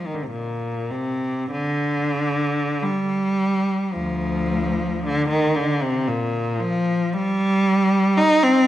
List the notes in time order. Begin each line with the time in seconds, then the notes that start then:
0.06 D#3
0.14 D3
0.23 C3
0.31 A#2
0.91 C3
1.51 D3
2.83 G3
3.94 D2 F3
5.03 D3
5.29 D#3
5.56 D3
5.82 C3
6.08 A#2
6.60 F3
7.13 G3
8.18 D#4
8.43 C4